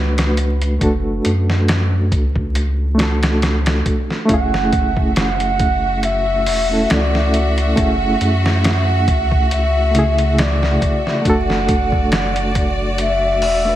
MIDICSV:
0, 0, Header, 1, 6, 480
1, 0, Start_track
1, 0, Key_signature, 3, "minor"
1, 0, Tempo, 869565
1, 452, Time_signature, 4, 2, 24, 8
1, 7593, End_track
2, 0, Start_track
2, 0, Title_t, "Flute"
2, 0, Program_c, 0, 73
2, 2374, Note_on_c, 0, 78, 119
2, 2831, Note_off_c, 0, 78, 0
2, 2858, Note_on_c, 0, 78, 108
2, 3334, Note_on_c, 0, 76, 102
2, 3343, Note_off_c, 0, 78, 0
2, 3815, Note_on_c, 0, 74, 97
2, 3824, Note_off_c, 0, 76, 0
2, 4294, Note_off_c, 0, 74, 0
2, 4297, Note_on_c, 0, 78, 111
2, 4612, Note_off_c, 0, 78, 0
2, 4778, Note_on_c, 0, 78, 97
2, 5258, Note_on_c, 0, 76, 106
2, 5266, Note_off_c, 0, 78, 0
2, 5740, Note_on_c, 0, 74, 90
2, 5748, Note_off_c, 0, 76, 0
2, 6219, Note_on_c, 0, 78, 111
2, 6227, Note_off_c, 0, 74, 0
2, 6693, Note_off_c, 0, 78, 0
2, 6696, Note_on_c, 0, 78, 100
2, 7012, Note_off_c, 0, 78, 0
2, 7181, Note_on_c, 0, 76, 96
2, 7593, Note_off_c, 0, 76, 0
2, 7593, End_track
3, 0, Start_track
3, 0, Title_t, "Violin section"
3, 0, Program_c, 1, 48
3, 2367, Note_on_c, 1, 76, 62
3, 2368, Note_on_c, 1, 66, 72
3, 6187, Note_off_c, 1, 76, 0
3, 6209, Note_on_c, 1, 74, 69
3, 7593, Note_off_c, 1, 66, 0
3, 7593, Note_off_c, 1, 74, 0
3, 7593, End_track
4, 0, Start_track
4, 0, Title_t, "Reed electric piano"
4, 0, Program_c, 2, 4
4, 0, Control_c, 2, 64, 127
4, 0, Note_on_c, 2, 57, 74
4, 0, Note_on_c, 2, 62, 69
4, 0, Note_on_c, 2, 66, 73
4, 0, Note_on_c, 2, 71, 85
4, 437, Note_off_c, 2, 57, 0
4, 437, Note_on_c, 2, 57, 69
4, 446, Note_off_c, 2, 62, 0
4, 446, Note_on_c, 2, 62, 68
4, 453, Note_off_c, 2, 66, 0
4, 453, Note_on_c, 2, 66, 64
4, 461, Note_on_c, 2, 69, 81
4, 619, Note_off_c, 2, 57, 0
4, 624, Note_off_c, 2, 62, 0
4, 627, Note_off_c, 2, 66, 0
4, 631, Note_off_c, 2, 69, 0
4, 1627, Note_on_c, 2, 57, 80
4, 1643, Note_on_c, 2, 62, 72
4, 1657, Note_on_c, 2, 66, 69
4, 1672, Note_on_c, 2, 69, 94
4, 2334, Note_off_c, 2, 57, 0
4, 2341, Note_off_c, 2, 62, 0
4, 2347, Note_on_c, 2, 57, 92
4, 2349, Note_off_c, 2, 66, 0
4, 2356, Note_off_c, 2, 69, 0
4, 2363, Note_on_c, 2, 61, 78
4, 2377, Note_on_c, 2, 64, 84
4, 2379, Control_c, 2, 64, 0
4, 2380, Note_off_c, 2, 71, 0
4, 2395, Note_on_c, 2, 68, 100
4, 2473, Control_c, 2, 64, 127
4, 3660, Note_off_c, 2, 57, 0
4, 3668, Note_off_c, 2, 61, 0
4, 3675, Note_off_c, 2, 64, 0
4, 3683, Note_off_c, 2, 68, 0
4, 3694, Note_on_c, 2, 57, 77
4, 3702, Note_on_c, 2, 61, 67
4, 3708, Note_on_c, 2, 64, 73
4, 3716, Note_on_c, 2, 69, 83
4, 3794, Note_off_c, 2, 57, 0
4, 3797, Note_off_c, 2, 61, 0
4, 3801, Note_off_c, 2, 64, 0
4, 3805, Note_off_c, 2, 69, 0
4, 4284, Note_on_c, 2, 57, 78
4, 4292, Note_on_c, 2, 61, 66
4, 4299, Note_on_c, 2, 64, 68
4, 4306, Note_on_c, 2, 68, 81
4, 4463, Note_off_c, 2, 57, 0
4, 4467, Note_off_c, 2, 61, 0
4, 4470, Note_off_c, 2, 64, 0
4, 4474, Note_off_c, 2, 68, 0
4, 5469, Note_on_c, 2, 57, 81
4, 5486, Note_on_c, 2, 49, 78
4, 5499, Note_on_c, 2, 64, 77
4, 5514, Note_on_c, 2, 68, 98
4, 6175, Note_off_c, 2, 57, 0
4, 6183, Note_off_c, 2, 49, 0
4, 6190, Note_off_c, 2, 64, 0
4, 6192, Note_on_c, 2, 57, 92
4, 6197, Note_off_c, 2, 68, 0
4, 6206, Note_on_c, 2, 62, 81
4, 6219, Control_c, 2, 64, 0
4, 6222, Note_on_c, 2, 66, 85
4, 6235, Note_on_c, 2, 69, 103
4, 6318, Control_c, 2, 64, 127
4, 7502, Note_off_c, 2, 57, 0
4, 7509, Note_off_c, 2, 62, 0
4, 7517, Note_off_c, 2, 66, 0
4, 7524, Note_off_c, 2, 69, 0
4, 7535, Note_on_c, 2, 57, 75
4, 7542, Note_on_c, 2, 62, 73
4, 7550, Note_on_c, 2, 66, 71
4, 7557, Note_on_c, 2, 71, 86
4, 7593, Note_off_c, 2, 57, 0
4, 7593, Note_off_c, 2, 62, 0
4, 7593, Note_off_c, 2, 66, 0
4, 7593, Note_off_c, 2, 71, 0
4, 7593, End_track
5, 0, Start_track
5, 0, Title_t, "Sub bass"
5, 0, Program_c, 3, 38
5, 0, Note_on_c, 3, 37, 85
5, 430, Note_off_c, 3, 37, 0
5, 449, Note_on_c, 3, 30, 85
5, 664, Note_off_c, 3, 30, 0
5, 692, Note_on_c, 3, 42, 89
5, 1168, Note_on_c, 3, 37, 89
5, 1176, Note_off_c, 3, 42, 0
5, 2109, Note_off_c, 3, 37, 0
5, 2369, Note_on_c, 3, 30, 86
5, 3572, Note_on_c, 3, 28, 91
5, 3580, Note_off_c, 3, 30, 0
5, 3786, Note_off_c, 3, 28, 0
5, 3814, Note_on_c, 3, 37, 88
5, 4272, Note_off_c, 3, 37, 0
5, 4291, Note_on_c, 3, 30, 91
5, 4505, Note_off_c, 3, 30, 0
5, 4531, Note_on_c, 3, 42, 85
5, 5010, Note_on_c, 3, 37, 95
5, 5019, Note_off_c, 3, 42, 0
5, 5950, Note_off_c, 3, 37, 0
5, 6210, Note_on_c, 3, 30, 92
5, 7410, Note_on_c, 3, 28, 101
5, 7418, Note_off_c, 3, 30, 0
5, 7593, Note_off_c, 3, 28, 0
5, 7593, End_track
6, 0, Start_track
6, 0, Title_t, "Drums"
6, 99, Note_on_c, 9, 42, 71
6, 103, Note_on_c, 9, 38, 94
6, 154, Note_off_c, 9, 42, 0
6, 158, Note_off_c, 9, 38, 0
6, 206, Note_on_c, 9, 42, 65
6, 261, Note_off_c, 9, 42, 0
6, 340, Note_on_c, 9, 42, 40
6, 395, Note_off_c, 9, 42, 0
6, 448, Note_on_c, 9, 36, 101
6, 449, Note_on_c, 9, 42, 73
6, 503, Note_off_c, 9, 36, 0
6, 504, Note_off_c, 9, 42, 0
6, 689, Note_on_c, 9, 42, 68
6, 744, Note_off_c, 9, 42, 0
6, 826, Note_on_c, 9, 38, 51
6, 881, Note_off_c, 9, 38, 0
6, 929, Note_on_c, 9, 42, 80
6, 934, Note_on_c, 9, 38, 103
6, 985, Note_off_c, 9, 42, 0
6, 989, Note_off_c, 9, 38, 0
6, 1169, Note_on_c, 9, 36, 89
6, 1170, Note_on_c, 9, 42, 64
6, 1224, Note_off_c, 9, 36, 0
6, 1225, Note_off_c, 9, 42, 0
6, 1300, Note_on_c, 9, 36, 85
6, 1355, Note_off_c, 9, 36, 0
6, 1409, Note_on_c, 9, 42, 75
6, 1464, Note_off_c, 9, 42, 0
6, 1651, Note_on_c, 9, 42, 75
6, 1655, Note_on_c, 9, 38, 106
6, 1706, Note_off_c, 9, 42, 0
6, 1710, Note_off_c, 9, 38, 0
6, 1781, Note_on_c, 9, 42, 71
6, 1785, Note_on_c, 9, 38, 93
6, 1836, Note_off_c, 9, 42, 0
6, 1840, Note_off_c, 9, 38, 0
6, 1889, Note_on_c, 9, 42, 67
6, 1894, Note_on_c, 9, 38, 101
6, 1945, Note_off_c, 9, 42, 0
6, 1949, Note_off_c, 9, 38, 0
6, 2021, Note_on_c, 9, 42, 69
6, 2025, Note_on_c, 9, 38, 97
6, 2076, Note_off_c, 9, 42, 0
6, 2080, Note_off_c, 9, 38, 0
6, 2129, Note_on_c, 9, 36, 92
6, 2130, Note_on_c, 9, 42, 67
6, 2184, Note_off_c, 9, 36, 0
6, 2185, Note_off_c, 9, 42, 0
6, 2266, Note_on_c, 9, 38, 39
6, 2321, Note_off_c, 9, 38, 0
6, 2369, Note_on_c, 9, 36, 103
6, 2369, Note_on_c, 9, 42, 78
6, 2424, Note_off_c, 9, 36, 0
6, 2424, Note_off_c, 9, 42, 0
6, 2507, Note_on_c, 9, 38, 43
6, 2562, Note_off_c, 9, 38, 0
6, 2609, Note_on_c, 9, 36, 90
6, 2609, Note_on_c, 9, 42, 60
6, 2664, Note_off_c, 9, 36, 0
6, 2664, Note_off_c, 9, 42, 0
6, 2741, Note_on_c, 9, 36, 89
6, 2796, Note_off_c, 9, 36, 0
6, 2849, Note_on_c, 9, 42, 81
6, 2853, Note_on_c, 9, 38, 108
6, 2904, Note_off_c, 9, 42, 0
6, 2909, Note_off_c, 9, 38, 0
6, 2981, Note_on_c, 9, 42, 39
6, 3036, Note_off_c, 9, 42, 0
6, 3088, Note_on_c, 9, 42, 61
6, 3089, Note_on_c, 9, 36, 89
6, 3143, Note_off_c, 9, 42, 0
6, 3145, Note_off_c, 9, 36, 0
6, 3329, Note_on_c, 9, 42, 81
6, 3384, Note_off_c, 9, 42, 0
6, 3569, Note_on_c, 9, 46, 80
6, 3624, Note_off_c, 9, 46, 0
6, 3809, Note_on_c, 9, 42, 76
6, 3813, Note_on_c, 9, 38, 108
6, 3864, Note_off_c, 9, 42, 0
6, 3869, Note_off_c, 9, 38, 0
6, 3947, Note_on_c, 9, 38, 45
6, 4002, Note_off_c, 9, 38, 0
6, 4050, Note_on_c, 9, 42, 67
6, 4106, Note_off_c, 9, 42, 0
6, 4183, Note_on_c, 9, 42, 40
6, 4238, Note_off_c, 9, 42, 0
6, 4291, Note_on_c, 9, 36, 101
6, 4291, Note_on_c, 9, 42, 80
6, 4346, Note_off_c, 9, 36, 0
6, 4346, Note_off_c, 9, 42, 0
6, 4532, Note_on_c, 9, 42, 66
6, 4587, Note_off_c, 9, 42, 0
6, 4669, Note_on_c, 9, 38, 53
6, 4724, Note_off_c, 9, 38, 0
6, 4772, Note_on_c, 9, 42, 78
6, 4776, Note_on_c, 9, 38, 111
6, 4827, Note_off_c, 9, 42, 0
6, 4831, Note_off_c, 9, 38, 0
6, 5011, Note_on_c, 9, 36, 88
6, 5011, Note_on_c, 9, 42, 60
6, 5066, Note_off_c, 9, 36, 0
6, 5066, Note_off_c, 9, 42, 0
6, 5142, Note_on_c, 9, 36, 88
6, 5197, Note_off_c, 9, 36, 0
6, 5251, Note_on_c, 9, 42, 80
6, 5306, Note_off_c, 9, 42, 0
6, 5491, Note_on_c, 9, 42, 66
6, 5547, Note_off_c, 9, 42, 0
6, 5622, Note_on_c, 9, 42, 40
6, 5677, Note_off_c, 9, 42, 0
6, 5732, Note_on_c, 9, 42, 81
6, 5737, Note_on_c, 9, 38, 106
6, 5787, Note_off_c, 9, 42, 0
6, 5792, Note_off_c, 9, 38, 0
6, 5867, Note_on_c, 9, 38, 42
6, 5923, Note_off_c, 9, 38, 0
6, 5971, Note_on_c, 9, 36, 90
6, 5972, Note_on_c, 9, 42, 66
6, 6026, Note_off_c, 9, 36, 0
6, 6028, Note_off_c, 9, 42, 0
6, 6109, Note_on_c, 9, 38, 38
6, 6165, Note_off_c, 9, 38, 0
6, 6211, Note_on_c, 9, 36, 98
6, 6212, Note_on_c, 9, 42, 77
6, 6266, Note_off_c, 9, 36, 0
6, 6267, Note_off_c, 9, 42, 0
6, 6348, Note_on_c, 9, 38, 41
6, 6403, Note_off_c, 9, 38, 0
6, 6450, Note_on_c, 9, 36, 92
6, 6451, Note_on_c, 9, 42, 65
6, 6505, Note_off_c, 9, 36, 0
6, 6506, Note_off_c, 9, 42, 0
6, 6581, Note_on_c, 9, 36, 84
6, 6636, Note_off_c, 9, 36, 0
6, 6689, Note_on_c, 9, 42, 78
6, 6694, Note_on_c, 9, 38, 108
6, 6744, Note_off_c, 9, 42, 0
6, 6749, Note_off_c, 9, 38, 0
6, 6822, Note_on_c, 9, 42, 42
6, 6877, Note_off_c, 9, 42, 0
6, 6929, Note_on_c, 9, 36, 87
6, 6929, Note_on_c, 9, 42, 68
6, 6984, Note_off_c, 9, 42, 0
6, 6985, Note_off_c, 9, 36, 0
6, 7167, Note_on_c, 9, 42, 83
6, 7222, Note_off_c, 9, 42, 0
6, 7407, Note_on_c, 9, 46, 77
6, 7463, Note_off_c, 9, 46, 0
6, 7593, End_track
0, 0, End_of_file